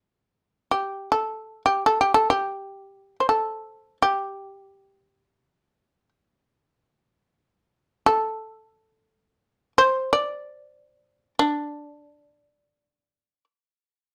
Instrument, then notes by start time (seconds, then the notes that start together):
shamisen
0.71 G4
1.12 A4
1.66 G4
1.86 A4
2.01 G4
2.14 A4
2.30 G4
3.20 C5
3.29 A4
4.02 G4
8.06 A4
9.78 C5
10.13 D5
11.39 D4